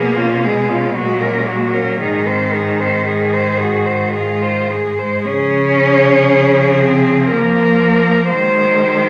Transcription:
0.00 0.85 B2 medium
0.00 0.46 A#3 medium
0.00 0.18 B3 medium
0.00 0.18 G#4 soft
0.17 0.44 C#4 soft
0.17 0.46 F4 medium
0.42 0.98 G#3 medium
0.42 0.70 B3 soft
0.42 0.71 G#4 soft
0.68 0.94 C#4 soft
0.68 0.95 F4 soft
0.95 1.89 A#2 medium
0.95 1.06 F#3 medium
0.95 1.23 A#3 soft
0.95 1.23 F#4 soft
1.05 1.15 G#3 medium
1.14 1.22 F#3 medium
1.21 1.32 G#3 medium
1.21 1.49 C#4 soft
1.21 1.49 A#4 soft
1.30 1.40 F#3 medium
1.39 1.49 G#3 medium
1.47 1.57 F#3 medium
1.47 1.74 A#3 soft
1.47 1.75 F#4 soft
1.56 1.65 G#3 soft
1.64 2.01 F#3 medium
1.73 1.98 C#4 soft
1.73 2.00 A#4 soft
1.99 2.96 G#2 soft
1.99 4.68 D#3 medium
1.99 2.27 D#4 soft
1.99 2.29 G#4 soft
2.26 2.54 C4 soft
2.26 2.56 C5 soft
2.53 2.81 D#4 soft
2.53 2.81 G#4 soft
2.79 3.05 C4 soft
2.79 3.06 C5 soft
3.06 4.03 G#2 medium
3.06 3.61 G#4 medium
3.06 3.35 G#4 soft
3.33 3.60 C5 soft
3.58 4.16 F#4 soft
3.58 3.88 G#4 soft
3.86 4.13 C5 soft
4.14 5.16 G#2 soft
4.14 4.70 F4 medium
4.14 4.44 G#4 soft
4.42 4.72 C5 soft
4.70 5.27 G#3 medium
4.70 5.00 G#4 soft
4.99 5.25 C5 soft
5.25 7.33 C#3 medium
5.25 8.27 F3 medium
5.25 6.81 C#4 medium
5.25 7.26 G#4 medium
6.79 7.32 C4 medium
7.31 8.33 F3 medium
7.31 8.31 A#3 medium
7.31 8.28 A#4 medium
8.29 9.09 D#3 medium
8.29 9.09 F#3 medium
8.29 9.09 G#3 medium
8.29 9.09 C5 medium

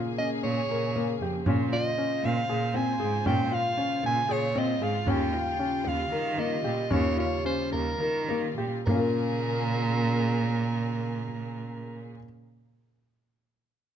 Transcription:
0.00 8.83 C#3 medium
0.00 1.43 A#3 medium
0.00 1.45 G#4 medium
0.18 0.53 C#4 medium
0.18 0.30 D#5 medium
0.43 0.68 A#2 medium
0.43 1.17 C#5 loud
0.43 frame drum soft
0.70 1.17 A#2 medium
0.70 0.88 A#4 medium
0.96 1.13 A#3 medium
0.96 frame drum medium
1.21 1.33 F2 medium
1.21 1.39 G4 medium
1.46 1.70 A#2 loud
1.46 1.64 C#4 medium
1.46 8.83 F4 medium
1.46 5.04 C5 medium
1.46 frame drum medium
1.72 1.90 F4 medium
1.72 2.27 D#5 loud
1.98 2.33 C#4 medium
2.24 2.47 A#2 loud
2.24 2.77 F5 loud
2.24 frame drum medium
2.49 2.97 A#2 medium
2.49 2.67 G#4 medium
2.49 frame drum soft
2.74 2.92 C4 medium
2.74 3.26 G#5 loud
2.74 frame drum medium
3.00 3.13 G#2 loud
3.00 3.17 G#4 medium
3.26 3.50 A#2 loud
3.26 3.43 C#4 loud
3.26 3.55 G5 loud
3.26 frame drum medium
3.51 3.69 F4 medium
3.51 4.05 F5 loud
3.51 frame drum soft
3.77 4.12 C#4 medium
4.03 4.27 A#2 loud
4.03 4.34 G#5 loud
4.03 frame drum medium
4.29 4.77 A#2 medium
4.29 4.47 G#4 medium
4.29 4.60 C#5 loud
4.29 frame drum soft
4.55 4.73 C4 medium
4.55 4.85 D#5 loud
4.55 frame drum soft
4.81 4.93 G#2 loud
4.81 4.99 G#4 medium
4.81 5.11 F5 medium
5.07 5.31 D#2 loud
5.07 8.83 G3 medium
5.07 5.25 C#4 loud
5.07 5.89 G5 loud
5.07 frame drum medium
5.33 5.51 F4 medium
5.59 5.94 C#4 medium
5.84 6.09 D#2 medium
5.84 6.41 F5 loud
5.84 frame drum medium
6.12 6.60 D#3 loud
6.12 6.29 A#4 medium
6.12 frame drum soft
6.37 6.55 A#3 medium
6.37 6.93 D#5 medium
6.37 frame drum soft
6.64 6.77 A#2 medium
6.64 6.82 G4 medium
6.90 7.16 D#2 loud
6.90 7.09 C#4 loud
6.90 7.18 C#5 loud
6.90 frame drum medium
7.17 7.36 F4 medium
7.17 7.44 C#5 loud
7.17 frame drum soft
7.45 7.82 C#4 medium
7.45 7.71 C5 medium
7.45 frame drum soft
7.72 7.98 D#2 medium
7.72 8.53 A#4 medium
7.72 frame drum medium
8.00 8.54 D#3 loud
8.00 8.19 A#4 medium
8.28 8.48 A#3 medium
8.28 frame drum medium
8.57 8.71 A#2 medium
8.57 8.77 G4 medium
8.86 12.12 A#2 loud
8.86 12.12 C#3 medium
8.86 12.12 A#3 medium
8.86 12.11 G#4 medium
8.86 12.10 A#4 medium
8.86 frame drum medium
8.91 12.15 C#4 medium
8.91 12.19 F4 medium
8.99 12.23 A#4 medium

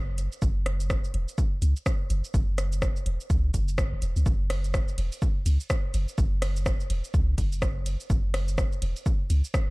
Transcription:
0.00 0.28 F#1 loud
0.18 closed hi-hat medium
0.18 shaker soft
0.32 shaker soft
0.42 1.00 F#1 loud
0.42 kick loud
0.42 shaker medium
0.66 cross-stick medium
0.66 closed hi-hat medium
0.80 closed hi-hat soft
0.80 shaker soft
0.90 kick loud
0.90 cross-stick medium
0.90 shaker medium
1.04 shaker soft
1.14 1.26 E1 medium
1.14 closed hi-hat medium
1.28 shaker soft
1.38 kick loud
1.38 shaker medium
1.62 1.74 C#2 medium
1.62 closed hi-hat medium
1.62 shaker medium
1.76 shaker soft
1.86 kick loud
1.86 cross-stick medium
1.86 shaker medium
2.10 2.22 F#1 medium
2.10 closed hi-hat medium
2.10 shaker soft
2.24 shaker soft
2.34 2.92 F#1 loud
2.34 kick loud
2.34 shaker medium
2.58 cross-stick medium
2.58 closed hi-hat medium
2.58 shaker soft
2.72 closed hi-hat soft
2.72 shaker soft
2.82 kick loud
2.82 cross-stick loud
2.82 shaker medium
2.96 shaker soft
3.06 3.18 E1 medium
3.06 closed hi-hat medium
3.20 shaker soft
3.30 3.50 C#2 medium
3.30 kick loud
3.30 shaker medium
3.54 3.92 F#1 loud
3.54 kick medium
3.54 closed hi-hat medium
3.54 shaker medium
3.68 shaker soft
3.78 kick loud
3.78 cross-stick loud
3.78 shaker medium
3.92 4.00 F#1 medium
4.02 4.14 E1 medium
4.02 closed hi-hat medium
4.02 shaker soft
4.16 4.24 C#2 medium
4.16 shaker soft
4.26 4.84 F#1 medium
4.26 kick loud
4.26 shaker medium
4.50 cross-stick medium
4.50 closed hi-hat loud
4.50 ride medium
4.64 closed hi-hat soft
4.64 shaker soft
4.74 kick loud
4.74 cross-stick loud
4.74 shaker medium
4.88 shaker soft
4.98 5.10 E1 medium
4.98 closed hi-hat medium
4.98 ride medium
5.12 ride soft
5.12 shaker soft
5.22 kick loud
5.22 shaker medium
5.46 5.58 C#2 medium
5.46 closed hi-hat medium
5.46 ride medium
5.46 shaker medium
5.60 shaker soft
5.70 kick loud
5.70 cross-stick loud
5.70 shaker medium
5.94 6.06 F#1 medium
5.94 closed hi-hat loud
5.94 ride medium
5.94 shaker soft
6.08 shaker soft
6.18 6.76 F#1 medium
6.18 kick loud
6.18 shaker medium
6.42 cross-stick medium
6.42 closed hi-hat loud
6.42 ride medium
6.56 closed hi-hat soft
6.56 shaker soft
6.66 kick loud
6.66 cross-stick loud
6.66 shaker medium
6.80 shaker soft
6.90 7.02 E1 medium
6.90 closed hi-hat loud
6.90 ride medium
7.04 shaker soft
7.14 7.34 C#2 medium
7.14 kick loud
7.14 shaker medium
7.38 7.96 F#1 loud
7.38 kick medium
7.38 closed hi-hat loud
7.38 ride medium
7.38 shaker soft
7.52 ride soft
7.52 shaker soft
7.62 kick loud
7.62 cross-stick loud
7.62 shaker medium
7.86 closed hi-hat loud
7.86 ride medium
7.86 shaker soft
8.00 shaker soft
8.10 8.68 F#1 loud
8.10 kick loud
8.10 shaker medium
8.34 cross-stick medium
8.34 closed hi-hat loud
8.34 ride medium
8.48 closed hi-hat soft
8.48 shaker soft
8.58 kick loud
8.58 cross-stick loud
8.58 shaker medium
8.72 shaker soft
8.82 8.94 E1 medium
8.82 closed hi-hat loud
8.82 ride medium
8.96 ride soft
8.96 shaker soft
9.06 kick loud
9.06 shaker medium
9.30 9.42 C#2 medium
9.30 closed hi-hat loud
9.30 ride medium
9.30 shaker soft
9.44 shaker soft
9.54 kick loud
9.54 cross-stick medium
9.54 shaker medium

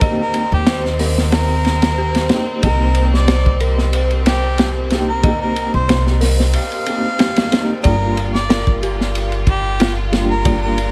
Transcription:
0.00 0.48 D#2 medium
0.00 2.29 A#3 medium
0.00 0.02 C4 medium
0.00 7.85 C4 medium
0.00 2.26 C4 medium
0.00 0.04 D#4 medium
0.00 2.27 D#4 medium
0.00 0.05 G4 medium
0.00 1.98 G4 medium
0.00 0.16 A#4 medium
0.00 0.99 A#4 medium
0.00 0.67 C5 medium
0.00 0.64 D#5 loud
0.00 kick loud
0.00 ride medium
0.05 2.28 G4 medium
0.21 0.49 A#4 medium
0.34 ride medium
0.52 2.27 D#2 loud
0.52 0.82 G4 medium
0.67 0.86 C5 medium
0.67 snare loud
0.67 ride medium
0.85 snare soft
0.99 1.94 A#4 medium
0.99 snare soft
0.99 open hi-hat medium
1.18 snare soft
1.32 2.50 A#4 loud
1.32 snare loud
1.32 ride medium
1.65 snare medium
1.65 ride medium
1.82 snare medium
1.82 ride medium
1.98 2.60 G4 medium
2.15 snare medium
2.15 ride medium
2.29 2.58 A#3 medium
2.29 2.59 C4 medium
2.29 2.59 D#4 medium
2.29 2.60 G4 medium
2.29 snare loud
2.29 ride medium
2.62 5.71 C2 loud
2.62 4.87 A#3 medium
2.62 4.88 C4 medium
2.62 4.88 D#4 medium
2.62 3.08 A#4 loud
2.62 3.25 D#5 loud
2.62 kick loud
2.62 ride medium
2.66 4.89 G4 medium
2.95 ride medium
3.13 3.56 D5 medium
3.13 snare soft
3.28 3.47 C5 medium
3.28 snare loud
3.28 ride medium
3.46 kick medium
3.60 4.55 A#4 medium
3.60 ride medium
3.78 snare soft
3.93 ride medium
4.11 ride soft
4.26 4.71 G4 loud
4.26 snare loud
4.26 ride medium
4.58 5.21 G4 medium
4.58 snare loud
4.58 ride medium
4.90 5.20 A#3 medium
4.90 5.20 C4 medium
4.90 5.21 D#4 medium
4.90 5.21 G4 medium
4.90 snare medium
4.90 ride medium
5.09 5.37 A#4 medium
5.23 6.83 A#3 medium
5.23 6.84 C4 medium
5.23 6.84 D#4 medium
5.23 5.86 D#5 loud
5.23 kick loud
5.23 ride medium
5.27 6.85 G4 medium
5.41 5.70 A#4 medium
5.56 ride medium
5.74 6.54 C2 medium
5.74 6.03 C5 medium
5.89 6.08 C5 medium
5.89 snare loud
5.89 ride medium
6.07 snare soft
6.21 7.16 A#4 medium
6.21 snare soft
6.21 open hi-hat medium
6.40 snare soft
6.53 7.72 F5 loud
6.53 ride medium
6.72 ride soft
6.86 7.48 A#3 medium
6.86 7.48 C4 medium
6.86 7.48 D#4 medium
6.86 7.49 G4 medium
6.86 ride medium
7.19 7.81 G4 medium
7.19 snare loud
7.19 ride medium
7.36 snare loud
7.36 ride medium
7.51 7.76 A#3 medium
7.51 7.76 C4 medium
7.51 7.76 D#4 medium
7.51 7.77 G4 loud
7.51 snare loud
7.51 ride medium
7.83 10.92 G1 medium
7.83 10.08 G3 medium
7.83 10.09 A#3 medium
7.83 10.10 D4 medium
7.83 10.92 F4 medium
7.83 8.29 A#4 loud
7.83 8.46 D5 loud
7.83 kick loud
7.83 ride medium
7.87 10.10 F4 medium
8.17 ride medium
8.34 8.78 D5 medium
8.34 snare soft
8.49 8.69 A#4 medium
8.49 snare loud
8.49 ride medium
8.67 kick loud
8.83 9.77 G4 medium
8.83 ride medium
9.01 snare soft
9.15 ride medium
9.32 ride soft
9.47 9.92 G4 loud
9.47 kick medium
9.47 ride medium
9.80 10.42 F4 medium
9.80 snare loud
9.80 ride medium
10.12 10.41 G3 medium
10.12 10.42 A#3 medium
10.12 10.42 D4 medium
10.12 10.42 F4 medium
10.12 snare medium
10.12 ride medium
10.31 10.59 A#4 loud
10.43 10.92 G3 medium
10.43 10.92 A#3 medium
10.43 10.92 D4 medium
10.43 10.92 D5 loud
10.43 kick loud
10.43 ride loud
10.48 10.92 F4 medium
10.62 10.91 A#4 medium
10.78 ride medium

